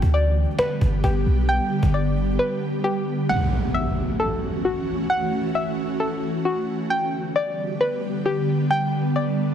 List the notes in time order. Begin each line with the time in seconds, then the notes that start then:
Already playing: D3 G3 B3 G4 G5
0.02 D2, cajon bass
0.13 D5, cajon slap
0.36 cajon slap
0.44 cajon slap
0.51 cajon slap
0.59 B4, cajon slap
0.81 G1, cajon bass
1.04 G1 G4, cajon bass
1.26 B1, cajon slap
1.49 G5, cajon slap
1.83 G1, cajon bass
1.94 D5, cajon slap
2.17 cajon slap
2.24 cajon slap
2.32 cajon slap
2.39 B4
2.84 G4
3.29 E3 A3 C#4 F#4 F#5, impact
3.74 E5
4.20 A4
4.65 F#4
5.10 F#5
5.55 E5
6.00 A4
6.45 F#4
6.90 D3 G3 B3 G4 G5
7.36 D5
7.81 B4
8.26 G4
8.71 A4 G5
9.16 D5